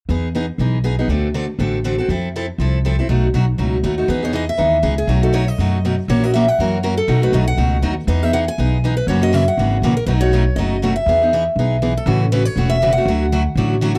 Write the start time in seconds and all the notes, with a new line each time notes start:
0.09 E2 E3 B3 D#4 G#4
0.35 E3 B3 D#4 G#4
0.58 B1 E3 B3 D#4 G#4
0.84 E3 B3 D#4 G#4
0.99 B3 D#4 G#4
1.08 D2 D3 A3 C4 F#4 A4
1.34 D3 A3 C4 F#4 A4
1.59 A1 D3 A3 C4 F#4 A4
1.84 D3 A3 C4 F#4 A4
1.98 C4 F#4 A4
2.08 F2 F3 C4 E4 A4
2.36 F3 C4 E4 A4
2.58 C2 F3 C4 E4 A4
2.85 F3 C4 E4 A4
2.99 C4 E4 A4
3.09 B1 B2 F#3 A3 D#4 F#4
3.34 B1 B2 F#3 A3 D#4 F#4
3.58 C#2 B2 F#3 A3 D#4 F#4
3.83 D#2 B2 F#3 A3 D#4 F#4
3.98 A3 D#4 F#4
4.08 E2 E3 B3 D#4 G#4 B4
4.23 B3 D#4 G#4 C#5
4.33 E3 B3 D#4 G#4 D#5
4.49 E5
4.57 D#2 E3 B3 D#4 G#4
4.83 C#2 E3 B3 D#4 G#4
4.98 G#4
5.07 B1 B2 F#3 A3 D#4 F#4
5.23 A3 D#4 F#4 A4
5.33 B2 F#3 A3 D#4 F#4 C#5
5.48 D#5
5.58 F#2 B2 F#3 A3 D#4 F#4
5.85 B2 F#3 A3 D#4 F#4
6.08 A#1 E3 A#3 C#4 F#4 A#4 C#5
6.23 C#4 F#4 A#4 D#5
6.34 E3 A#3 C#4 F#4 A#4 E5
6.48 F#5
6.59 F#2 E3 A#3 C#4 F#4 A#4
6.83 E3 A#3 C#4 F#4 A#4
6.97 A4
7.08 B1 B2 F#3 A3 D#4 F#4
7.22 A3 D#4 F#4 B4
7.32 B1 B2 F#3 A3 D#4 F#4 D#5
7.47 F#5
7.57 C#2 B2 F#3 A3 D#4 F#4
7.82 D#2 B2 F#3 A3 D#4 F#4
8.07 E2 E3 B3 D#4 G#4 D#5
8.23 B3 D#4 G#4 E5
8.33 E3 B3 D#4 G#4 F#5
8.48 G#5
8.58 B1 E3 B3 D#4 G#4
8.84 E3 B3 D#4 G#4
8.97 B4
9.07 F#2 C#3 E3 A#3 C#4 F#4 C#5
9.21 A#3 C#4 F#4 D#5
9.33 C#3 E3 A#3 C#4 F#4 E5
9.48 F#5
9.57 G#1 C#3 E3 A#3 C#4 F#4
9.82 A#1 C#3 E3 A#3 C#4 F#4
9.97 A#4
10.06 B1 B2 F#3 A3 D#4 F#4 B4
10.21 A3 D#4 F#4 C#5
10.33 B2 F#3 A3 D#4 F#4
10.56 F#1 B2 F#3 A3 D#4 F#4 D#5
10.82 B2 F#3 A3 D#4 F#4
10.96 E5
11.06 E2 E3 B3 D#4 G#4
11.22 B3 D#4 G#4
11.33 E3 B3 D#4 G#4
11.56 B1 E3 B3 D#4 G#4
11.82 E3 B3 D#4 G#4
11.97 A4
12.06 A1 C#3 E3 A3 C#4 F#4
12.32 C#3 E3 A3 C#4 F#4 B4
12.45 C#5
12.56 E1 C#3 E3 A3 C#4 F#4
12.70 E5
12.82 C#3 E3 A3 C#4 F#4
12.93 F#5
12.97 A3 C#4 F#4
13.05 D2 D3 F#3 A3 E4 F#4
13.32 D3 F#3 A3 E4 F#4
13.55 A1 D3 F#3 A3 E4 F#4
13.81 D3 F#3 A3 E4 F#4
13.95 F#4 A4